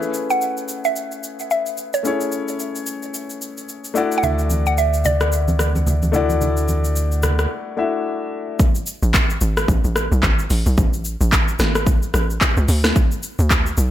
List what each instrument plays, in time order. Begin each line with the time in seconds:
Already playing: grand piano A3 C#4 E4 G#4 B4, synth pluck E5
0.02 shaker
0.14 shaker
0.30 synth pluck F#5, shaker
0.41 shaker
0.57 shaker
0.68 shaker
0.84 synth pluck E5, shaker
0.96 shaker
1.12 shaker
1.23 shaker
1.39 shaker
1.51 synth pluck E5, shaker
1.66 shaker
1.77 shaker
1.94 synth pluck C#5, shaker
2.03 grand piano A3 C#4 E4 G#4, shaker
2.07 grand piano C#5
2.21 shaker
2.32 shaker
2.48 shaker
2.60 shaker
2.75 shaker
2.86 shaker
3.03 shaker
3.14 shaker
3.30 shaker
3.42 shaker
3.58 shaker
3.69 shaker
3.84 shaker
3.94 grand piano A3 D4 E4 F#4, shaker
3.98 grand piano D5
4.12 shaker
4.18 synth pluck F#5
4.23 sub bass D2, synth pluck E5, low conga, shaker
4.39 shaker
4.50 high conga, shaker
4.66 synth pluck F#5, shaker
4.78 synth pluck E5, shaker
4.94 shaker
5.05 synth pluck D5, low conga, shaker
5.21 cross-stick, shaker
5.32 shaker
5.48 high conga, shaker
5.59 cross-stick, shaker
5.75 high conga, shaker
5.87 low conga, shaker
6.03 high conga, shaker
6.12 grand piano A3 D4 E4 F#4, low conga, shaker
6.16 grand piano D5
6.30 high conga, shaker
6.41 low conga, shaker
6.57 shaker
6.68 high conga, shaker
6.84 shaker
6.96 shaker
7.12 shaker
7.23 cross-stick, low conga, shaker
7.39 cross-stick, shaker
7.77 grand piano A3 D4 E4 F#4 E5
8.60 kick, shaker
8.75 shaker
8.86 shaker
9.03 log drum bass A1, shaker
9.14 kick, clap, shaker
9.30 shaker
9.41 log drum bass G#1, shaker
9.57 cross-stick, shaker
9.68 log drum bass A1, kick, shaker
9.84 log drum bass A1, shaker
9.96 cross-stick, shaker
10.12 log drum bass B1, shaker
10.23 log drum bass G#1, kick, clap, shaker
10.39 shaker
10.50 log drum bass A1, open hi-hat, shaker
10.66 log drum bass B1, shaker
10.78 log drum bass A1, kick, shaker
10.93 shaker
11.05 shaker
11.21 log drum bass A1, shaker
11.32 kick, clap, shaker
11.48 shaker
11.59 log drum bass G#1, cross-stick, snare, shaker
11.75 cross-stick, shaker
11.87 kick, shaker
12.03 shaker
12.14 log drum bass A1, cross-stick, shaker
12.30 shaker
12.41 kick, clap, shaker
12.57 log drum bass C#2, shaker
12.68 log drum bass D2, open hi-hat, shaker
12.84 cross-stick, snare, shaker
12.96 kick, shaker
13.12 shaker
13.23 shaker
13.39 log drum bass D2, shaker
13.50 kick, clap, shaker
13.66 shaker
13.77 log drum bass B1, shaker